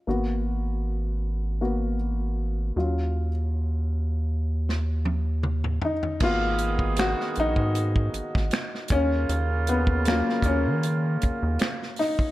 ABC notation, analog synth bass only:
X:1
M:4/4
L:1/16
Q:"Swing 16ths" 1/4=78
K:G#dor
V:1 name="Analog synth bass" clef=bass
G,,,12- G,,,2 D,,2- | D,,12- D,,2 z2 | G,,,4- G,,, z A,,, G,,3 G,,, G,,, z2 D,,2 | D,,4- D,, z D,, D,3 D,, D,, z4 |]